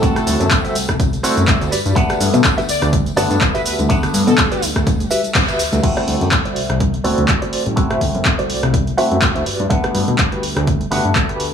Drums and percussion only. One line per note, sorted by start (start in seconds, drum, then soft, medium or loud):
0.03 kick loud
0.03 closed hi-hat medium
0.03 tambourine medium
0.03 shaker soft
0.16 cross-stick medium
0.16 closed hi-hat soft
0.16 tambourine soft
0.16 shaker soft
0.27 open hi-hat loud
0.27 tambourine loud
0.27 high conga medium
0.27 shaker medium
0.40 closed hi-hat soft
0.40 tambourine soft
0.40 low conga medium
0.40 shaker soft
0.51 kick loud
0.51 clap loud
0.51 closed hi-hat loud
0.51 tambourine medium
0.51 shaker soft
0.65 closed hi-hat soft
0.65 tambourine soft
0.65 high conga medium
0.65 shaker soft
0.75 open hi-hat loud
0.75 tambourine loud
0.75 shaker medium
0.89 kick medium
0.89 cross-stick medium
0.89 closed hi-hat soft
0.89 shaker soft
1.00 kick loud
1.00 closed hi-hat loud
1.00 tambourine medium
1.00 high conga medium
1.00 shaker soft
1.13 closed hi-hat soft
1.13 tambourine soft
1.13 shaker soft
1.24 open hi-hat loud
1.24 tambourine loud
1.24 shaker medium
1.37 closed hi-hat soft
1.37 tambourine soft
1.37 high conga medium
1.37 shaker soft
1.47 kick loud
1.47 clap loud
1.47 closed hi-hat medium
1.47 tambourine medium
1.47 shaker soft
1.62 closed hi-hat soft
1.62 tambourine soft
1.62 shaker soft
1.72 open hi-hat loud
1.72 tambourine medium
1.72 shaker medium
1.86 closed hi-hat soft
1.86 tambourine soft
1.86 high conga medium
1.86 shaker soft
1.96 kick loud
1.96 closed hi-hat medium
1.96 tambourine medium
1.96 shaker soft
2.09 cross-stick medium
2.09 closed hi-hat soft
2.09 tambourine soft
2.09 shaker soft
2.21 open hi-hat loud
2.21 tambourine medium
2.21 high conga medium
2.21 shaker medium
2.34 closed hi-hat soft
2.34 tambourine soft
2.34 low conga medium
2.34 shaker soft
2.44 kick loud
2.44 clap loud
2.44 closed hi-hat loud
2.44 tambourine medium
2.44 shaker soft
2.58 closed hi-hat soft
2.58 tambourine soft
2.58 high conga medium
2.58 shaker soft
2.69 open hi-hat loud
2.69 tambourine loud
2.69 shaker medium
2.82 cross-stick medium
2.82 closed hi-hat soft
2.82 tambourine soft
2.82 shaker soft
2.93 kick loud
2.93 closed hi-hat loud
2.93 tambourine medium
2.93 high conga medium
2.93 shaker soft
3.06 closed hi-hat soft
3.06 tambourine soft
3.06 shaker soft
3.17 open hi-hat loud
3.17 tambourine medium
3.17 low conga medium
3.17 shaker medium
3.30 closed hi-hat soft
3.30 tambourine soft
3.30 high conga medium
3.30 shaker soft
3.41 kick loud
3.41 clap loud
3.41 closed hi-hat medium
3.41 tambourine medium
3.41 shaker soft
3.55 closed hi-hat soft
3.55 tambourine soft
3.55 shaker soft
3.66 open hi-hat loud
3.66 tambourine medium
3.66 shaker medium
3.79 closed hi-hat soft
3.79 tambourine soft
3.79 high conga medium
3.79 shaker soft
3.90 kick loud
3.90 closed hi-hat medium
3.90 tambourine medium
3.90 shaker soft
4.03 cross-stick medium
4.03 closed hi-hat soft
4.03 tambourine soft
4.03 shaker soft
4.14 open hi-hat loud
4.14 tambourine loud
4.14 high conga medium
4.14 shaker medium
4.27 closed hi-hat soft
4.27 tambourine soft
4.27 low conga medium
4.27 shaker soft
4.38 kick loud
4.38 clap loud
4.38 closed hi-hat loud
4.38 tambourine medium
4.38 shaker soft
4.52 closed hi-hat soft
4.52 tambourine soft
4.52 high conga medium
4.52 shaker soft
4.62 open hi-hat loud
4.62 tambourine loud
4.62 shaker medium
4.76 kick medium
4.76 cross-stick medium
4.76 closed hi-hat soft
4.76 tambourine soft
4.76 shaker soft
4.87 kick loud
4.87 closed hi-hat loud
4.87 tambourine medium
4.87 high conga medium
4.87 shaker soft
5.00 closed hi-hat soft
5.00 tambourine soft
5.00 shaker soft
5.10 open hi-hat loud
5.10 tambourine medium
5.10 shaker medium
5.24 closed hi-hat soft
5.24 tambourine soft
5.24 high conga medium
5.24 shaker soft
5.35 kick loud
5.35 clap loud
5.35 closed hi-hat loud
5.35 tambourine medium
5.35 shaker soft
5.48 closed hi-hat soft
5.48 tambourine soft
5.48 shaker soft
5.59 open hi-hat loud
5.59 tambourine loud
5.59 shaker medium
5.72 closed hi-hat soft
5.72 tambourine soft
5.72 high conga medium
5.72 shaker soft
5.83 kick loud
5.83 closed hi-hat medium
5.83 tambourine medium
5.83 crash medium
5.97 cross-stick medium
5.97 closed hi-hat soft
5.97 tambourine soft
6.08 open hi-hat loud
6.08 tambourine loud
6.08 high conga loud
6.21 closed hi-hat soft
6.21 tambourine soft
6.21 low conga medium
6.32 kick loud
6.32 clap loud
6.32 closed hi-hat loud
6.45 closed hi-hat soft
6.45 tambourine soft
6.45 high conga medium
6.56 open hi-hat loud
6.56 tambourine medium
6.70 cross-stick medium
6.70 closed hi-hat soft
6.80 kick loud
6.80 closed hi-hat medium
6.80 tambourine medium
6.80 high conga medium
6.94 closed hi-hat soft
6.94 tambourine soft
7.05 open hi-hat loud
7.05 tambourine loud
7.05 low conga medium
7.18 closed hi-hat soft
7.18 tambourine soft
7.18 high conga medium
7.28 kick loud
7.28 clap loud
7.28 closed hi-hat loud
7.42 closed hi-hat soft
7.42 tambourine soft
7.53 open hi-hat loud
7.53 tambourine medium
7.66 closed hi-hat soft
7.66 tambourine soft
7.66 high conga medium
7.77 kick loud
7.77 closed hi-hat medium
7.91 cross-stick medium
7.91 closed hi-hat soft
7.91 tambourine soft
8.01 kick medium
8.01 open hi-hat loud
8.01 tambourine medium
8.01 high conga medium
8.15 closed hi-hat soft
8.15 tambourine soft
8.15 low conga medium
8.25 kick loud
8.25 clap loud
8.25 closed hi-hat medium
8.25 tambourine medium
8.38 closed hi-hat soft
8.38 tambourine soft
8.38 high conga medium
8.49 open hi-hat loud
8.49 tambourine medium
8.63 cross-stick medium
8.63 closed hi-hat soft
8.74 kick loud
8.74 closed hi-hat medium
8.74 tambourine soft
8.74 high conga medium
8.87 closed hi-hat soft
8.87 tambourine soft
8.98 open hi-hat loud
8.98 tambourine medium
9.11 closed hi-hat soft
9.11 tambourine soft
9.11 high conga medium
9.22 kick loud
9.22 clap loud
9.22 closed hi-hat medium
9.36 closed hi-hat soft
9.46 open hi-hat loud
9.46 tambourine medium
9.60 closed hi-hat soft
9.60 tambourine soft
9.60 high conga medium
9.70 kick loud
9.70 closed hi-hat medium
9.70 tambourine soft
9.84 cross-stick medium
9.84 closed hi-hat soft
9.84 tambourine soft
9.94 open hi-hat loud
9.94 tambourine medium
9.94 high conga medium
10.08 closed hi-hat soft
10.08 tambourine soft
10.08 low conga medium
10.18 kick loud
10.18 clap loud
10.18 closed hi-hat medium
10.32 closed hi-hat soft
10.32 tambourine soft
10.32 high conga medium
10.43 open hi-hat loud
10.43 tambourine medium
10.57 cross-stick medium
10.57 closed hi-hat soft
10.66 kick loud
10.66 closed hi-hat medium
10.66 tambourine soft
10.66 high conga loud
10.80 closed hi-hat soft
10.80 tambourine soft
10.91 open hi-hat loud
10.91 tambourine medium
10.91 low conga medium
11.05 closed hi-hat soft
11.05 tambourine soft
11.05 high conga medium
11.15 kick loud
11.15 clap loud
11.15 closed hi-hat medium
11.15 tambourine soft
11.29 closed hi-hat soft
11.29 tambourine soft
11.40 open hi-hat loud
11.40 tambourine medium